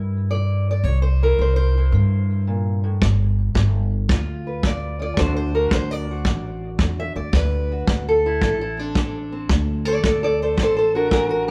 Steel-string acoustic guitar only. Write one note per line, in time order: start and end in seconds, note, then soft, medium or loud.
0.00 0.30 C3 medium
0.00 0.87 G3 soft
0.00 0.85 E4 soft
0.00 0.85 A#4 soft
0.31 0.83 C3 medium
0.31 0.67 D5 medium
0.71 0.84 D5 medium
0.84 1.37 C3 medium
0.84 1.02 C#5 medium
1.02 1.39 C5 medium
1.23 1.76 E4 soft
1.23 1.94 A#4 medium
1.41 1.90 C3 medium
1.41 1.55 C5 medium
1.56 2.40 C5 loud
1.78 3.00 E4 soft
1.94 2.44 C3 medium
2.47 2.83 A#2 medium
2.84 3.01 A2 medium
3.02 3.52 G2 medium
3.55 4.05 G2 medium
4.09 4.59 G2 medium
4.09 4.98 F4 medium
4.47 4.64 B4 soft
4.63 5.13 G2 medium
4.63 5.01 D5 medium
4.99 5.15 F4 medium
4.99 5.18 D5 medium
5.17 5.68 D3 medium
5.17 8.29 D4 medium
5.17 5.54 F#4 medium
5.17 5.35 C5 medium
5.37 5.72 C5 loud
5.55 6.11 F#4 soft
5.55 5.72 A#4 medium
5.73 6.22 D3 medium
5.73 5.91 C5 medium
5.91 6.74 D5 loud
6.11 7.72 F#4 soft
6.28 6.77 D3 medium
6.82 7.31 D3 medium
7.00 7.16 E5 medium
7.16 7.35 D5 medium
7.34 7.84 D3 medium
7.34 8.06 B4 medium
7.72 8.26 F#4 soft
7.88 8.38 D3 medium
8.09 8.43 A4 medium
8.26 8.60 E4 medium
8.42 8.92 D3 medium
8.42 9.15 A4 medium
8.61 8.79 E4 medium
8.77 9.31 C4 soft
8.77 9.85 D4 medium
8.96 9.46 D3 medium
9.32 9.48 C4 soft
9.50 10.00 D3 medium
9.85 10.03 A4 medium
9.85 10.04 D5 loud
10.03 10.54 D3 medium
10.03 10.22 A4 medium
10.03 10.22 D5 medium
10.23 10.40 A4 medium
10.23 10.41 D5 loud
10.42 10.59 A4 medium
10.42 10.59 C5 medium
10.57 11.07 D3 medium
10.62 10.75 A4 medium
10.62 10.77 C5 loud
10.76 10.94 A4 medium
10.76 10.95 C5 medium
10.95 11.51 D4 soft
10.95 11.10 F#4 medium
10.95 11.11 A#4 medium
11.11 11.47 E3 medium
11.11 11.28 F#4 medium
11.11 11.29 A#4 loud
11.29 11.47 F#4 medium
11.29 11.48 A#4 medium
11.48 11.51 F#3 medium